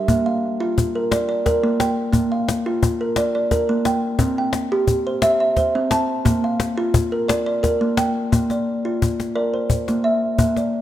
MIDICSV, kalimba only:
0, 0, Header, 1, 2, 480
1, 0, Start_track
1, 0, Tempo, 686499
1, 60, Time_signature, 3, 2, 24, 8
1, 7562, End_track
2, 0, Start_track
2, 0, Title_t, "Kalimba"
2, 0, Program_c, 0, 108
2, 0, Note_on_c, 0, 76, 65
2, 58, Note_on_c, 0, 58, 75
2, 183, Note_on_c, 0, 77, 59
2, 185, Note_off_c, 0, 76, 0
2, 423, Note_on_c, 0, 65, 74
2, 538, Note_off_c, 0, 77, 0
2, 663, Note_off_c, 0, 65, 0
2, 667, Note_on_c, 0, 70, 59
2, 779, Note_on_c, 0, 74, 76
2, 845, Note_off_c, 0, 58, 0
2, 892, Note_off_c, 0, 74, 0
2, 900, Note_on_c, 0, 74, 63
2, 1011, Note_off_c, 0, 70, 0
2, 1020, Note_on_c, 0, 70, 71
2, 1143, Note_on_c, 0, 58, 74
2, 1256, Note_off_c, 0, 74, 0
2, 1258, Note_on_c, 0, 79, 68
2, 1383, Note_off_c, 0, 58, 0
2, 1384, Note_off_c, 0, 70, 0
2, 1486, Note_on_c, 0, 58, 81
2, 1620, Note_on_c, 0, 77, 61
2, 1623, Note_off_c, 0, 79, 0
2, 1861, Note_on_c, 0, 65, 73
2, 1975, Note_off_c, 0, 77, 0
2, 2101, Note_off_c, 0, 65, 0
2, 2103, Note_on_c, 0, 70, 54
2, 2217, Note_on_c, 0, 74, 77
2, 2277, Note_off_c, 0, 58, 0
2, 2334, Note_off_c, 0, 74, 0
2, 2342, Note_on_c, 0, 74, 63
2, 2448, Note_off_c, 0, 70, 0
2, 2456, Note_on_c, 0, 70, 67
2, 2581, Note_on_c, 0, 58, 74
2, 2696, Note_off_c, 0, 74, 0
2, 2698, Note_on_c, 0, 79, 77
2, 2821, Note_off_c, 0, 58, 0
2, 2821, Note_off_c, 0, 70, 0
2, 2930, Note_on_c, 0, 60, 86
2, 3056, Note_off_c, 0, 79, 0
2, 3064, Note_on_c, 0, 79, 63
2, 3299, Note_on_c, 0, 67, 76
2, 3416, Note_off_c, 0, 79, 0
2, 3540, Note_off_c, 0, 67, 0
2, 3543, Note_on_c, 0, 72, 63
2, 3652, Note_on_c, 0, 76, 76
2, 3719, Note_off_c, 0, 60, 0
2, 3770, Note_off_c, 0, 76, 0
2, 3778, Note_on_c, 0, 76, 60
2, 3886, Note_off_c, 0, 72, 0
2, 3895, Note_on_c, 0, 72, 72
2, 4022, Note_on_c, 0, 60, 74
2, 4133, Note_off_c, 0, 76, 0
2, 4135, Note_on_c, 0, 81, 71
2, 4260, Note_off_c, 0, 72, 0
2, 4261, Note_off_c, 0, 60, 0
2, 4371, Note_on_c, 0, 58, 78
2, 4500, Note_off_c, 0, 81, 0
2, 4503, Note_on_c, 0, 77, 62
2, 4737, Note_on_c, 0, 65, 76
2, 4856, Note_off_c, 0, 77, 0
2, 4979, Note_off_c, 0, 65, 0
2, 4979, Note_on_c, 0, 70, 60
2, 5093, Note_on_c, 0, 74, 75
2, 5161, Note_off_c, 0, 58, 0
2, 5211, Note_off_c, 0, 74, 0
2, 5219, Note_on_c, 0, 74, 64
2, 5327, Note_off_c, 0, 70, 0
2, 5335, Note_on_c, 0, 70, 66
2, 5461, Note_on_c, 0, 58, 70
2, 5575, Note_off_c, 0, 74, 0
2, 5580, Note_on_c, 0, 79, 69
2, 5701, Note_off_c, 0, 58, 0
2, 5702, Note_off_c, 0, 70, 0
2, 5820, Note_on_c, 0, 58, 72
2, 5944, Note_off_c, 0, 79, 0
2, 5949, Note_on_c, 0, 74, 52
2, 6058, Note_off_c, 0, 58, 0
2, 6188, Note_on_c, 0, 65, 68
2, 6301, Note_off_c, 0, 74, 0
2, 6426, Note_off_c, 0, 65, 0
2, 6541, Note_on_c, 0, 74, 66
2, 6542, Note_on_c, 0, 70, 55
2, 6667, Note_on_c, 0, 72, 52
2, 6780, Note_off_c, 0, 74, 0
2, 6907, Note_off_c, 0, 70, 0
2, 6912, Note_on_c, 0, 58, 68
2, 7020, Note_on_c, 0, 76, 63
2, 7021, Note_off_c, 0, 72, 0
2, 7149, Note_off_c, 0, 58, 0
2, 7264, Note_on_c, 0, 58, 73
2, 7387, Note_off_c, 0, 76, 0
2, 7392, Note_on_c, 0, 74, 53
2, 7503, Note_off_c, 0, 58, 0
2, 7562, Note_off_c, 0, 74, 0
2, 7562, End_track
0, 0, End_of_file